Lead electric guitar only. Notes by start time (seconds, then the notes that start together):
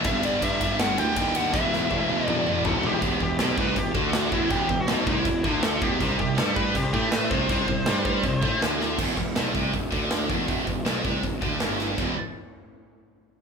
0.06 E5
0.25 D5
0.44 E5
0.80 F#5
0.98 G5
1.17 G5
1.36 F#5
1.53 E5
2.28 D5
2.68 A4
2.86 G4
3.23 G4
3.61 B4
3.77 G4
3.96 F#4
4.33 E4
4.51 G4
4.81 F#4
5.08 E4
5.53 D4
5.65 A4
5.82 G4
6.21 G4
6.38 A4
6.55 B4
6.76 G4
6.94 G4
7.11 B4
7.29 C5